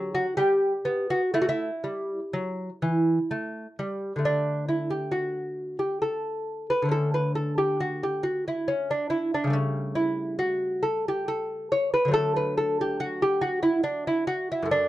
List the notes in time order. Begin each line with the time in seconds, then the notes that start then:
Already playing: F#3 G4
0.15 F#4
0.37 G3 G4
0.85 B3
1.10 F#4
1.34 A3 E4
1.42 F#4
1.49 E4
1.84 G3
2.33 F#3
2.82 E3
3.31 A3
3.79 G3
4.16 D3 A3
4.25 D4
4.69 E4
4.90 G4
5.11 F#4
5.79 G4
6.02 A4
6.70 B4
6.82 D3 A3
6.89 C#4 A4
7.14 B4
7.35 A4
7.58 G4
7.80 F#4
8.03 G4
8.23 F#4
8.48 E4
8.68 C#4
8.91 D4
9.10 E4
9.34 D4
9.44 C#3 G3
9.50 A3 C#4
9.95 E4
10.39 F#4
10.83 A4
11.08 G4
11.28 A4
11.72 C#5
11.94 B4
12.05 D3 F#3
12.11 A3 A4
12.36 B4
12.57 A4
12.81 G4
13.00 F#4
13.22 G4
13.41 F#4
13.63 E4
13.84 D4
14.07 E4
14.27 F#4
14.52 E4
14.63 F#2 A3
14.71 D4